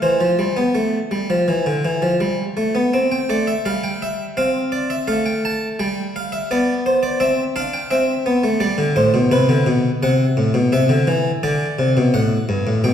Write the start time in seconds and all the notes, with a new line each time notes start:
0.02 E3 C5
0.21 F3
0.39 G3
0.57 B3
0.75 A3
1.11 G3
1.30 F3
1.48 E3
1.66 D3
1.85 E3
2.02 F3
2.20 G3
2.57 A3
2.75 B3
2.94 C4
3.12 G5
3.29 A3 D5
3.47 E5
3.65 G3 F5
3.84 G5
4.02 E5
4.37 C4 F5
4.72 D5
4.90 E5
5.08 A3 F5
5.26 G5
5.45 A5
5.79 G3 G5
6.16 F5
6.32 E5
6.51 B3 D5
6.86 C5
7.03 D5
7.20 C4 E5
7.56 D4 F5
7.74 G5
7.91 C4 E5
8.26 B3
8.44 A3
8.60 G3 D5
8.78 D3
8.96 A2 C5
9.14 B2
9.31 C3 B4
9.49 D3
9.66 B2
10.03 C3 F#5
10.37 A2
10.54 B2
10.72 C3 E5
10.89 D3
11.07 E3
11.43 D3 D5
11.79 C3
11.97 B2
12.14 A2 F#5
12.49 G2
12.67 A2
12.84 B2 G5